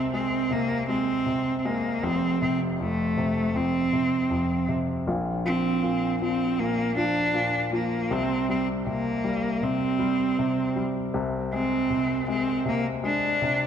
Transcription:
Already playing: C2 C3 G#3
0.13 G#3 C4
0.51 C3 A#3
0.89 G#3 C4
1.26 C3
1.59 C4
1.65 G#3 A#3
2.03 F1 F2 C4
2.42 C3 C4
2.80 F2 A3
3.17 C3
3.55 F2 C4
3.93 C3
4.30 F2
4.69 C3
5.07 A#1 A#2
5.45 F3 C4
5.83 A#2
6.21 F3 C4
6.59 A#2 A#3
6.97 F3 D4
7.34 A#2
7.72 F3 A#3
8.11 C2 C3 C4
8.49 G3 C4
8.86 C3 A#3
9.24 G3
9.62 C3 C4
9.99 G3
10.39 C3
10.76 G3
11.14 C2 C3
11.53 G#3 C4
11.90 C3
12.28 G#3 C4
12.65 C3 A#3
13.04 G#3 D4
13.42 C3

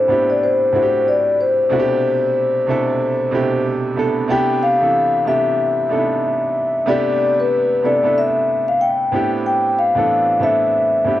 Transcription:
Already playing: A2 A3 B3 C4 D4 E4 G4 A4 C5
0.08 A2 B3 C4 D4 E4 G4
0.30 D5
0.43 C5
0.73 A2 A3 C4 D4 E4 F#4 C5
0.83 G4
1.08 D5
1.41 C5
1.69 B2 C3 A3 D4 E4 F#4
1.80 G4
2.67 B2 C3 A3 D4 E4 A4
3.31 B2 C3 A3 D4 E4 G4
3.96 C3 A3 B3 D4 E4 A4
4.28 C3 A3 B3 D4 E4 G4 G5
4.63 F5
4.79 C3 E3 A3 B3 D4 A4
5.25 C3 A3 B3 D4 E4 G4 E5
5.89 C3 A3 B3 D4 D#4 A4
5.98 E4
6.86 C3 A3 B3 D4 E4 G4 D5
7.40 B4
7.83 C3 A3 B3 D4 E4 A4 D5
8.02 C3 A3 B3 D4 E4 A4
8.18 E5
8.68 F5
8.81 G5
9.12 A2 B3 C4 D4 E4 G4
9.46 G5
9.79 F5
9.95 A2 E3 B3 C4 D4 A4
10.40 A2 B3 C4 D4 E4 A4 E5
11.04 A2 B3 C4 D4 E4 G4

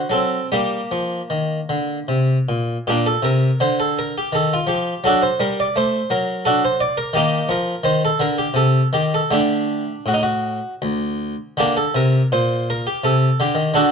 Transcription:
0.10 F#3 C4 A4
0.52 G3 A#3 G4
0.91 F3
1.30 D#3
1.69 D3
2.08 C3
2.49 A#2
2.87 A#2 A#3 D4 G4
3.06 A4
3.23 C3 A#4
3.60 D3 C5
3.80 A4
3.99 A#4
4.18 G4
4.33 D#3 A4
4.53 F4
4.67 F3 G4
5.04 F#3 D4 F#4 A4
5.23 C5
5.40 G3 A#4
5.60 D5
5.76 A3 C5
6.10 F#3 A#4
6.45 D4 F#4 A4
6.65 C5
6.81 D5
6.98 A#4
7.13 D#3 A#3 D#4 G4
7.49 F3 A#4
7.84 D#3 C5
8.05 A4
8.20 D3 A#4
8.38 G4
8.54 C3 A4
8.93 D#3 G4
9.14 A4
9.31 D3 A3 D4 G4
10.06 A2 F#4
10.14 D#4
10.23 F#4
10.82 D2
11.57 D3 A#3 D4 G4
11.77 A4
11.95 C3 A#4
12.32 A#2 C5
12.70 A#4
12.87 G4
13.04 C3 A4
13.40 D3 G4
13.55 D#3
13.74 D3 D4 F#4 A4

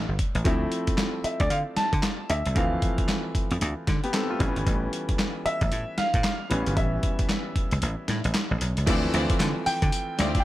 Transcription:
Already playing: G3 B3 C#4 E4
0.09 G1
0.19 kick, closed hi-hat
0.35 A1, closed hi-hat
0.44 D2 F3 A3 C4 E4, kick, closed hi-hat
0.72 closed hi-hat
0.87 muted slap bass stroke, kick, closed hi-hat
0.98 snare, clap, closed hi-hat
1.24 E5, muted slap bass stroke, closed hi-hat
1.40 D2 D5, kick, closed hi-hat
1.50 D3 F5, closed hi-hat
1.77 A5, muted slap bass stroke, snare, closed hi-hat
1.93 D3, kick, closed hi-hat
2.03 snare, clap, closed hi-hat
2.30 D2 E5, closed hi-hat
2.46 C2, closed hi-hat
2.55 D2 E3 F3 A3 C4 F5, kick, closed hi-hat
2.82 kick, closed hi-hat
2.98 muted slap bass stroke, kick, closed hi-hat
3.09 snare, clap, closed hi-hat
3.35 muted slap bass stroke, kick, closed hi-hat
3.51 F2, closed hi-hat
3.61 D2, closed hi-hat
3.87 D3, kick, snare, closed hi-hat
4.04 B3 G4, closed hi-hat
4.14 C4 A4, snare, clap, closed hi-hat
4.30 A3 F4
4.39 A1 E3 G3 B3 C#4, kick, closed hi-hat
4.56 G1, closed hi-hat
4.67 A1, kick, closed hi-hat
4.93 closed hi-hat
5.09 muted slap bass stroke, kick, closed hi-hat
5.19 snare, clap, closed hi-hat
5.46 E5, muted slap bass stroke, closed hi-hat
5.61 A1, kick, closed hi-hat
5.72 A2, closed hi-hat
5.98 F5, muted slap bass stroke, snare, closed hi-hat
6.14 A2, kick, closed hi-hat
6.24 snare, clap, closed hi-hat
6.50 A1 E3 G3 B3 C#4, closed hi-hat
6.66 G1, closed hi-hat
6.77 A1 E5, kick, closed hi-hat
7.03 kick, closed hi-hat
7.19 muted slap bass stroke, kick, closed hi-hat
7.29 snare, clap, closed hi-hat
7.56 muted slap bass stroke, kick, closed hi-hat
7.71 C#2, closed hi-hat
7.82 A1, closed hi-hat
8.08 A2, snare, closed hi-hat
8.24 A1, closed hi-hat
8.34 snare, clap, closed hi-hat
8.51 A1
8.61 B1, closed hi-hat
8.77 C#2, closed hi-hat
8.86 D2 E3 F3 A3 C4 E4 F4 C5 D5, kick, closed hi-hat, crash, tambourine
9.13 D2 E4 F4 C5 D5, closed hi-hat
9.30 kick, closed hi-hat
9.40 D3, snare, clap, closed hi-hat, tambourine
9.66 G5, muted slap bass stroke, open hi-hat, tambourine
9.82 D3, kick, closed hi-hat
9.92 closed hi-hat, tambourine
10.19 D2 E4 F4 C5 D5, snare, closed hi-hat, tambourine
10.35 kick, closed hi-hat
10.40 G5

